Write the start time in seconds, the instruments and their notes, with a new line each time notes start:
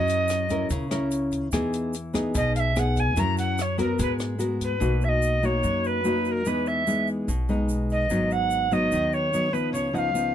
Already playing: upright bass F#2, nylon-string guitar F#3 C#4 E4 A#4, recorder D#5
0.08 closed hi-hat, shaker
0.28 cross-stick, closed hi-hat, shaker
0.49 nylon-string guitar C#4 E4 A#4, kick, closed hi-hat, shaker
0.70 upright bass C#2, nylon-string guitar C#3, kick, closed hi-hat, shaker
0.91 nylon-string guitar C#4 E4 A#4, cross-stick, closed hi-hat, shaker
1.11 closed hi-hat, shaker
1.31 kick, closed hi-hat, shaker
1.52 upright bass E2, nylon-string guitar E3 B3 D#4 G#4, kick, cross-stick, closed hi-hat, shaker
1.73 closed hi-hat, shaker
1.93 closed hi-hat, shaker
2.14 nylon-string guitar B3 D#4 G#4, kick, cross-stick, closed hi-hat, shaker
2.34 upright bass B1, nylon-string guitar B2, recorder D#5, kick, closed hi-hat, shaker
2.56 recorder F5, closed hi-hat, shaker
2.60 recorder E5
2.76 nylon-string guitar B3 D#4 G#4, recorder F#5, cross-stick, closed hi-hat, shaker
2.96 kick, closed hi-hat, shaker
3.00 recorder G#5
3.16 upright bass F#2, nylon-string guitar F#3 C#4 E4 A#4, recorder A#5, kick, closed hi-hat, shaker
3.37 recorder F#5, closed hi-hat, shaker
3.58 cross-stick, closed hi-hat, shaker
3.62 recorder C#5
3.78 nylon-string guitar B3 F#4 A#4, recorder A#4, kick, closed hi-hat, shaker
3.99 upright bass G#2, nylon-string guitar G#3, recorder B4, kick, closed hi-hat, shaker
4.19 cross-stick, closed hi-hat, shaker
4.39 nylon-string guitar B3 F#4 A#4, closed hi-hat, shaker
4.61 recorder B4, kick, closed hi-hat, shaker
4.80 upright bass B1, nylon-string guitar B2 A#3 D#4 F#4, shaker
5.01 recorder E5, shaker
5.09 recorder D#5
5.22 shaker
5.43 nylon-string guitar A#3 D#4 F#4, recorder C#5, shaker
5.63 upright bass F#2, nylon-string guitar F#3, shaker
5.84 recorder B4, shaker
6.04 nylon-string guitar A#3 D#4 F#4, shaker
6.25 recorder B4, shaker
6.32 recorder A#4
6.45 upright bass E2, nylon-string guitar E3 G#3 B3 D#4, recorder B4, shaker
6.66 recorder E5, shaker
6.87 nylon-string guitar G#3 B3 D#4, shaker
7.07 shaker
7.28 upright bass B1, nylon-string guitar B2, shaker
7.49 nylon-string guitar G#3 B3 D#4, shaker
7.69 shaker
7.90 recorder D#5, shaker
8.10 upright bass G#1, nylon-string guitar G#2 F#3 B3 D#4, shaker
8.31 recorder F#5, shaker
8.50 shaker
8.71 nylon-string guitar F#3 B3 D#4, recorder D#5, shaker
8.92 upright bass D#2, nylon-string guitar D#3, shaker
9.13 recorder C#5, shaker
9.33 nylon-string guitar F#3 B3 D#4, shaker
9.52 nylon-string guitar F3 B3 D#4, recorder B4, shaker
9.73 upright bass C#2, nylon-string guitar C#3, recorder C#5, shaker
9.93 nylon-string guitar F3 B3 D#4, recorder F#5, shaker
9.98 recorder F5
10.14 nylon-string guitar F3 B3 D#4, shaker